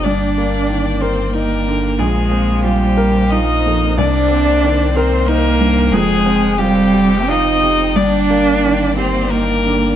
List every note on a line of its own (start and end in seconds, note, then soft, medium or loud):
0.00 2.01 G1 medium
0.00 5.92 A#3 medium
0.00 1.03 D5 medium
0.00 1.99 D5 medium
0.00 1.96 G5 medium
0.05 1.96 G2 medium
0.05 1.03 D4 medium
0.38 0.89 A#3 medium
0.70 1.22 D#3 medium
1.01 1.33 C4 medium
1.01 1.54 A#4 medium
1.01 1.35 C5 medium
1.33 2.00 A#3 medium
1.33 1.87 D#4 medium
1.33 2.01 A#4 medium
1.68 2.00 D3 medium
1.98 3.94 A#1 medium
1.98 3.99 A#1 medium
1.98 2.65 G#3 loud
1.98 3.98 F4 medium
1.98 2.63 G#4 medium
1.98 7.95 C5 medium
2.32 2.84 C4 medium
2.63 3.34 G3 loud
2.63 3.19 F4 medium
2.63 3.32 G4 medium
2.97 3.52 A#4 medium
3.31 4.00 D#4 loud
3.31 3.85 F4 medium
3.31 3.98 D#5 loud
3.66 3.99 F2 medium
3.98 5.88 C2 medium
3.98 5.93 C2 medium
3.98 4.94 D4 loud
3.98 4.97 D5 medium
3.98 9.96 G5 medium
4.31 4.83 C4 medium
4.64 5.15 D#3 medium
4.95 5.28 C4 loud
4.95 5.48 A#4 medium
4.95 5.30 C5 loud
5.27 5.94 A#3 loud
5.27 5.80 D#4 medium
5.27 5.93 A#4 loud
5.60 5.93 G2 medium
5.92 7.95 F1 medium
5.92 7.91 F2 medium
5.92 6.60 G#3 loud
5.92 7.96 C4 medium
5.92 6.60 G#4 loud
6.26 6.79 C4 medium
6.58 7.31 G3 loud
6.58 7.14 F4 medium
6.58 7.30 G4 loud
6.94 7.49 G4 medium
7.29 7.97 D#4 loud
7.29 7.82 F4 medium
7.29 7.97 D#5 loud
7.62 7.95 C3 medium
7.94 9.96 G1 medium
7.94 9.96 G2 medium
7.94 9.96 A#3 medium
7.94 8.96 D4 loud
7.94 8.96 D5 loud
7.94 9.96 D5 medium
8.30 8.83 A#3 medium
8.64 9.18 D#3 medium
8.96 9.32 C4 loud
8.96 9.52 G4 medium
8.96 9.32 C5 medium
9.30 9.96 A#3 medium
9.30 9.87 D#4 medium
9.30 9.96 A#4 loud
9.66 9.96 D3 medium